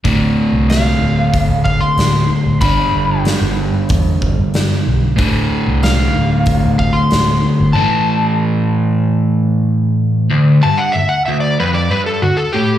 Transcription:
<<
  \new Staff \with { instrumentName = "Electric slide guitar" } { \time 4/4 \key g \major \tempo 4 = 94 r4 f''4. f''16 c'''4~ c'''16 | b''4 r2. | r4 f''4. f''16 c'''4~ c'''16 | a''4 r2. |
r8 a''16 fis''16 e''16 fis''16 e''16 d''16 b'16 d''16 b'16 a'16 fis'16 a'16 g'8 | }
  \new Staff \with { instrumentName = "Overdriven electric guitar" } { \clef bass \time 4/4 \key g \major <d, a, d>1 | <g, d g>1 | <d, a, d>1 | <a, e a>1 |
d,8 g,8 d,8 d,8 f,8 g,8 d,8 a,8 | }
  \new Staff \with { instrumentName = "Fingered electric bass" } { \clef bass \time 4/4 \key g \major d,,8 r16 c,8. d,,8 r16 d,,8 r16 d,,8 r16 d,,16 | g,,8 g,,8 r16 g,,8 r16 e,8. g,8 r16 b,,8 | d,,8 r16 c,8. d,,8 r16 d,,8 r16 d,,8 r16 g,,16 | r1 |
r1 | }
  \new DrumStaff \with { instrumentName = "Drums" } \drummode { \time 4/4 <hho bd>4 <hho sn>4 <hho bd>8 bd8 <hho sn>4 | <hho bd>4 <hho sn>4 <hho bd>8 bd8 <hho sn>4 | <hho bd>4 <hho sn>4 <hho bd>8 bd8 <hho sn>4 | r4 r4 r4 r4 |
r4 r4 r4 r4 | }
>>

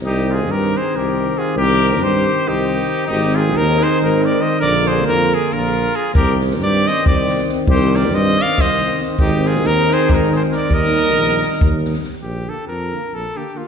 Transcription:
<<
  \new Staff \with { instrumentName = "Trumpet" } { \time 7/8 \key c \minor \tempo 4 = 138 g'8 aes'8 bes'8 c''8 bes'4 aes'8 | bes'4 c''4 g'4. | g'8 aes'8 bes'8 c''8 bes'8 d''8 ees''8 | d''8 c''8 bes'8 aes'8 bes'4 aes'8 |
bes'8 r8 d''8 ees''8 d''4 r8 | c''8 d''8 ees''8 f''8 ees''4 r8 | g'8 aes'8 bes'8 c''8 bes'8 c''8 d''8 | ees''2~ ees''8 r4 |
\key bes \major g'8 a'8 bes'4 a'8 g'8 f'8 | }
  \new Staff \with { instrumentName = "Trumpet" } { \time 7/8 \key c \minor ees'8 f'8 g'8 aes'8 g'4 f'8 | g'4 g'4 ees'4. | ees'8 f'8 ees'8 aes'8 ees'8 bes'8 c''8 | bes'8 aes'8 f'8 f'8 f'4 f'8 |
g'8 r8 g'8 c''8 g'4 r8 | g'8 bes'8 c''8 d''8 c''4 r8 | ees'8 f'8 ees'8 aes'8 ees'8 aes'8 bes'8 | bes'2~ bes'8 r4 |
\key bes \major r2. r8 | }
  \new Staff \with { instrumentName = "French horn" } { \time 7/8 \key c \minor c'2.~ c'8~ | c'2.~ c'8 | c'2.~ c'8 | bes2. r8 |
c'2.~ c'8~ | c'2.~ c'8 | c'2.~ c'8 | g2. r8 |
\key bes \major r8 bes8 r8 bes8 r8 bes8 bes8 | }
  \new Staff \with { instrumentName = "Euphonium" } { \clef bass \time 7/8 \key c \minor ees2.~ ees8~ | ees2.~ ees8 | ees2.~ ees8 | d2. r8 |
ees2.~ ees8~ | ees2.~ ees8 | ees2.~ ees8 | ees2. r8 |
\key bes \major r8 d8 r8 d8 r8 d8 d8 | }
  \new Staff \with { instrumentName = "Tuba" } { \clef bass \time 7/8 \key c \minor c,4 g,4 c,4. | c,4 g,4 c,4. | aes,,4 ees,4 aes,,4. | bes,,4 f,4 bes,,4. |
c,4 g,4 c,4. | c,4 g,4 c,4. | aes,,4 ees,4 aes,,4. | ees,4 bes,,4 ees,4. |
\key bes \major bes,,4 f,4 bes,,8 r4 | }
  \new DrumStaff \with { instrumentName = "Drums" } \drummode { \time 7/8 r4 r4 r4. | r4 r4 r4. | r4 r4 r4. | r4 r4 r4. |
bd8 sn16 sn16 sn8 sn16 sn16 bd8 sn16 sn16 sn8 | bd8 sn16 sn16 sn8 sn16 sn16 bd8 sn16 sn16 sn8 | bd8 sn16 sn16 sn8. sn16 bd8 sn8 sn8 | bd16 sn16 sn8 sn16 sn16 sn16 sn16 bd8 sn16 sn16 sn16 sn16 |
r4 r4 r4. | }
>>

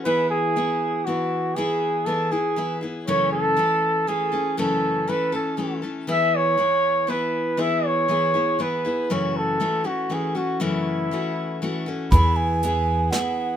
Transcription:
<<
  \new Staff \with { instrumentName = "Ocarina" } { \time 3/4 \key e \major \tempo 4 = 119 r2. | r2. | r2. | r2. |
r2. | r2. | r2. | r2. |
b''8 gis''4. fis''4 | }
  \new Staff \with { instrumentName = "Flugelhorn" } { \time 3/4 \key e \major b'8 gis'4. fis'4 | gis'4 a'8 gis'4 r8 | cis''8 a'4. gis'4 | a'4 b'8 a'4 r8 |
e''8 cis''4. b'4 | e''8 cis''4. b'4 | cis''8 a'4 fis'8 gis'8 fis'8 | e'2~ e'8 r8 |
r2. | }
  \new Staff \with { instrumentName = "Steel-string acoustic guitar" } { \time 3/4 \key e \major <e b e' gis'>4 <e b e' gis'>4 <e b e' gis'>4 | <e b e' gis'>4 <e b e' gis'>8 <b e' gis'>8 <e b e' gis'>8 <b e' gis'>8 | <fis, cis e a cis' a'>4 <e a cis' a'>4 <e a cis' a'>8 <e a cis' a'>8 | <fis, cis e a cis' a'>4 <e a cis' a'>8 <e a cis' a'>8 <e a cis' a'>8 <e a cis' a'>8 |
<e b e' gis'>4 <e b e' gis'>4 <e b e' gis'>4 | <e b e' gis'>4 <e b e' gis'>8 <b e' gis'>8 <e b e' gis'>8 <b e' gis'>8 | <fis, cis e a cis' fis'>4 <e a cis' fis'>8 <e a cis' fis'>8 <e a cis' fis'>8 <e a cis' fis'>8 | <fis, cis e a cis' fis'>4 <e a cis' fis'>4 <e a cis' fis'>8 <e a cis' fis'>8 |
<e b e' gis'>4 <e b e' gis'>4 <e b e' gis'>4 | }
  \new Staff \with { instrumentName = "Upright bass" } { \clef bass \time 3/4 \key e \major r2. | r2. | r2. | r2. |
r2. | r2. | r2. | r2. |
e,2 r4 | }
  \new DrumStaff \with { instrumentName = "Drums" } \drummode { \time 3/4 r4 r4 r4 | r4 r4 r4 | r4 r4 r4 | r4 r4 r4 |
r4 r4 r4 | r4 r4 r4 | r4 r4 r4 | r4 r4 r4 |
<hh bd>4 hh4 <hh sn>4 | }
>>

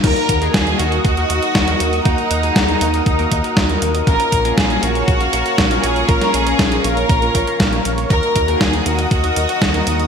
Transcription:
<<
  \new Staff \with { instrumentName = "Analog synth pad" } { \time 4/4 \key ees \minor \tempo 4 = 119 << { <ees'' ges'' ees'''>1~ | <ees'' ges'' ees'''>1 | <des'' f'' des'''>1~ | <des'' f'' des'''>1 |
<ees'' ges'' ees'''>1 | } \\ { bes'1~ | bes'1~ | bes'1~ | bes'1~ |
bes'1 | } >> }
  \new Staff \with { instrumentName = "Violin section" } { \time 4/4 \key ees \minor bes'4 aes'8 ges'8 ges'2 | ees'2 ees'4. r8 | bes'4 aes'8 ges'2 aes'8 | bes'8 aes'4 bes'2 r8 |
bes'4 aes'8 ges'8 ges'2 | }
  \new Staff \with { instrumentName = "Analog polysynth" } { \time 4/4 \key ees \minor <bes ees' ges' bes'>8. <bes ees' ges' aes'>8. <bes ees' ges' bes'>8 r16 <bes ees' ges' bes'>4 <bes ees' ges' bes'>8. | <bes ees' ges' bes'>8. <bes ees' ges' aes'>8. <bes ees' ges' bes'>8 r16 <bes ees' ges' bes'>4 <bes ees' ges' bes'>8. | <bes des' f' bes'>8. <bes des' f' aes'>8. <bes des' f' bes'>8 r16 <bes des' bes' f''>4 <bes des' f' bes'>8. | <bes des' f' bes'>8. <bes des' f' aes'>8. <bes des' f' bes'>8 r16 <bes des' f' bes'>8 <bes des' f' bes'>8. <bes des' f' bes'>16 r16 |
<bes ees' ges' bes'>8. <bes ees' ges' aes'>8. <bes ees' ges' bes'>8 r16 <bes ees' ges' bes'>4 <bes ees' ges' bes'>8. | }
  \new Staff \with { instrumentName = "Analog synth bass" } { \clef bass \time 4/4 \key ees \minor ees,8 ees,8 ees,8 ees,8 ees,8 ees,8 ees,8 ees,8 | ees,8 ees,8 ees,8 ees,8 ees,8 ees,8 ees,8 ees,8 | bes,,8 bes,,8 bes,,8 bes,,8 bes,,8 bes,,8 bes,,8 bes,,8 | bes,,8 bes,,8 bes,,8 bes,,8 bes,,8 bes,,8 bes,,8 bes,,8 |
ees,8 ees,8 ees,8 ees,8 ees,8 ees,8 ees,8 ees,8 | }
  \new DrumStaff \with { instrumentName = "Drums" } \drummode { \time 4/4 <cymc hh bd>16 hh16 <hh bd>16 hh16 <hh bd sn>16 hh16 hh16 hh16 <hh bd>16 hh16 hh16 hh16 <hh bd sn>16 hh16 hh16 hh16 | <hh bd>16 hh16 hh16 hh16 <hh bd sn>16 hh16 hh16 hh16 <hh bd>16 hh16 <hh bd>16 hh16 <hh bd sn>16 hh16 hh16 hh16 | <hh bd>16 hh16 <hh bd>16 hh16 <hh bd sn>16 hh16 hh16 hh16 <hh bd>16 hh16 hh16 hh16 <hh bd sn>16 hh16 hh16 hh16 | <hh bd>16 <hh sn>16 hh16 hh16 <hh bd sn>16 hh16 hh16 hh16 <hh bd>16 hh16 <hh bd>16 hh16 <hh bd sn>16 hh16 hh16 hh16 |
<hh bd>16 hh16 <hh bd>16 hh16 <hh bd sn>16 hh16 hh16 hh16 <hh bd>16 hh16 hh16 hh16 <hh bd sn>16 hh16 hh16 hh16 | }
>>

